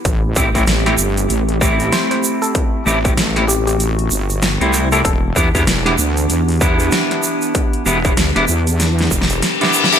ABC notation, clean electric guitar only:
X:1
M:4/4
L:1/16
Q:"Swing 16ths" 1/4=96
K:Ador
V:1 name="Clean electric guitar"
z2 [A,CEG] [A,CEG] z [A,CEG] z4 [A,CEG]6- | [A,CEG]2 [A,CEG] [A,CEG] z [A,CEG] z6 z [A,CEG]2 [A,CEG] | z2 [B,DEG] [B,DEG] z [B,DEG] z4 [B,DEG]6- | [B,DEG]2 [B,DEG] [B,DEG] z [B,DEG] z6 z [B,DEG]2 [B,DEG] |]